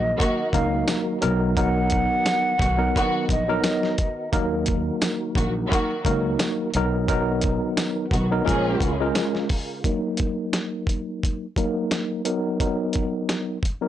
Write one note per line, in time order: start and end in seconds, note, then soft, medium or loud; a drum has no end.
0.00 0.12 A#1 loud
0.00 1.20 D#3 medium
0.00 0.41 F#3 loud
0.00 1.20 F#3 medium
0.00 0.41 A#3 medium
0.00 0.41 D#4 medium
0.00 6.70 F#4 medium
0.00 0.41 A#4 loud
0.00 9.81 A#4 medium
0.00 0.48 D#5 loud
0.19 0.48 D#3 medium
0.19 0.48 A#3 loud
0.19 0.48 F#4 loud
0.19 kick loud
0.19 closed hi-hat medium
0.53 0.81 C#2 medium
0.53 1.17 F#3 medium
0.53 1.17 A#3 medium
0.53 1.18 D#4 medium
0.53 1.18 A#4 loud
0.53 0.85 F5 medium
0.53 kick medium
0.53 closed hi-hat medium
0.88 snare loud
0.88 snare medium
0.88 closed hi-hat medium
0.88 tambourine medium
1.21 2.06 B1 loud
1.21 8.42 D#3 medium
1.21 1.54 F#3 loud
1.21 4.29 B3 medium
1.21 1.54 B3 medium
1.21 1.54 D#4 medium
1.21 1.54 A#4 loud
1.21 closed hi-hat medium
1.56 2.53 F#3 medium
1.56 2.53 B3 medium
1.56 2.53 D#4 medium
1.56 2.53 A#4 loud
1.56 3.25 F#5 loud
1.56 kick loud
1.56 closed hi-hat loud
1.90 kick medium
1.90 closed hi-hat medium
2.25 snare loud
2.25 snare medium
2.25 closed hi-hat loud
2.25 tambourine medium
2.59 2.88 B1 loud
2.59 2.76 D#3 medium
2.59 2.76 B3 medium
2.59 2.76 F#4 loud
2.59 kick loud
2.59 closed hi-hat medium
2.77 3.41 F#3 loud
2.77 3.41 B3 medium
2.77 3.42 D#4 medium
2.77 3.42 A#4 loud
2.96 3.25 D#3 loud
2.96 3.25 B3 loud
2.96 3.25 F#4 loud
2.96 kick loud
2.96 closed hi-hat loud
3.29 3.57 A#1 medium
3.29 4.30 D#5 medium
3.29 kick medium
3.29 closed hi-hat medium
3.48 3.95 F#3 loud
3.48 3.95 B3 medium
3.48 3.95 D#4 medium
3.48 3.95 A#4 loud
3.64 snare loud
3.64 snare medium
3.64 closed hi-hat medium
3.64 tambourine medium
3.83 snare soft
3.98 kick medium
3.98 closed hi-hat medium
4.32 4.88 D#2 loud
4.32 5.93 F#3 medium
4.32 6.72 F#3 medium
4.32 5.93 A#3 medium
4.32 5.93 D#4 medium
4.32 5.93 A#4 loud
4.32 kick loud
4.32 closed hi-hat medium
4.66 kick loud
4.66 closed hi-hat medium
5.01 snare loud
5.01 snare medium
5.01 closed hi-hat loud
5.01 tambourine medium
5.35 5.63 A#1 loud
5.35 5.52 D#3 medium
5.35 5.52 A#3 medium
5.35 5.52 F#4 medium
5.35 kick loud
5.35 closed hi-hat medium
5.70 5.99 D#3 loud
5.70 5.99 A#3 loud
5.70 5.99 F#4 loud
5.70 kick loud
5.70 closed hi-hat medium
6.05 6.33 C#2 medium
6.05 6.69 F#3 medium
6.05 6.69 A#3 medium
6.05 6.69 D#4 medium
6.05 6.70 A#4 loud
6.05 kick loud
6.05 closed hi-hat medium
6.39 snare loud
6.39 snare medium
6.39 closed hi-hat medium
6.39 tambourine medium
6.74 7.57 B1 loud
6.74 7.07 F#3 medium
6.74 8.45 B3 medium
6.74 7.07 B3 medium
6.74 7.07 D#4 medium
6.74 8.45 F#4 medium
6.74 7.07 A#4 loud
6.74 closed hi-hat medium
7.08 8.04 F#3 medium
7.08 8.04 B3 medium
7.08 8.05 D#4 medium
7.08 8.05 A#4 loud
7.08 kick loud
7.08 closed hi-hat medium
7.41 kick loud
7.41 closed hi-hat medium
7.77 snare loud
7.77 snare medium
7.77 closed hi-hat loud
7.77 tambourine medium
8.11 8.39 B1 medium
8.11 8.28 D#3 medium
8.11 8.28 B3 medium
8.11 8.28 F#4 medium
8.11 kick loud
8.11 closed hi-hat medium
8.31 8.46 F#3 medium
8.31 8.46 B3 medium
8.31 8.47 D#4 medium
8.31 8.45 A#4 loud
8.45 8.75 A#1 loud
8.45 9.83 C#3 medium
8.45 8.92 F3 loud
8.45 8.95 G#3 medium
8.45 9.83 G#3 medium
8.45 8.95 C#4 medium
8.45 8.92 C#4 loud
8.45 8.95 F4 medium
8.45 9.83 F4 medium
8.45 8.92 G#4 loud
8.45 8.95 A#4 loud
8.45 kick loud
8.49 closed hi-hat medium
8.81 9.09 C#2 medium
8.81 kick medium
8.81 closed hi-hat medium
9.00 9.46 G#3 loud
9.00 9.47 C#4 medium
9.00 9.47 F4 medium
9.00 9.47 A#4 loud
9.15 snare loud
9.15 snare medium
9.15 closed hi-hat medium
9.15 tambourine medium
9.35 snare soft
9.49 kick medium
9.49 open hi-hat medium
9.84 11.44 F#3 medium
9.84 11.45 A#3 medium
9.84 11.45 D#4 medium
9.84 11.45 A#4 loud
9.84 kick loud
9.84 closed hi-hat medium
10.17 kick medium
10.17 closed hi-hat medium
10.53 snare loud
10.53 snare medium
10.53 closed hi-hat medium
10.87 kick loud
10.87 closed hi-hat medium
11.23 kick loud
11.23 closed hi-hat medium
11.56 12.21 F#3 medium
11.56 12.21 A#3 medium
11.56 12.21 D#4 medium
11.56 12.21 A#4 medium
11.56 kick medium
11.56 closed hi-hat medium
11.91 snare loud
11.91 snare medium
11.91 closed hi-hat medium
12.25 12.57 F#3 medium
12.25 12.57 B3 medium
12.25 12.58 D#4 medium
12.25 12.58 A#4 loud
12.25 closed hi-hat medium
12.60 13.56 F#3 medium
12.60 13.56 B3 medium
12.60 13.56 D#4 medium
12.60 13.57 A#4 medium
12.60 kick loud
12.60 closed hi-hat medium
12.93 kick medium
12.93 closed hi-hat medium
13.29 snare loud
13.29 snare medium
13.29 closed hi-hat medium
13.63 kick loud
13.63 closed hi-hat medium
13.81 13.88 F#3 medium
13.81 13.88 B3 medium
13.81 13.88 D#4 medium
13.81 13.88 A#4 medium